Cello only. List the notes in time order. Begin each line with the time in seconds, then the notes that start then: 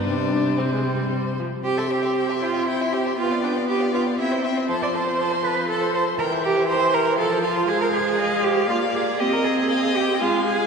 0.05 C3
1.64 G4
1.78 A4
1.90 G4
2.41 F4
2.67 E4
2.93 G4
3.18 F4
3.43 D4
3.68 G4
3.94 F4
4.19 E4
4.44 C4
4.69 C5
4.83 D5
4.94 C5
5.44 B4
5.69 A4
5.94 C5
6.19 A#4
6.43 G4
6.69 C5
6.94 A#4
7.19 A4
7.44 F4
7.69 G#4
7.82 A#4
7.93 G#4
8.44 G4
8.70 F4
8.95 G#4
9.20 G4
9.33 A#4
9.45 G#4
9.95 G4
10.20 F4
10.46 G#4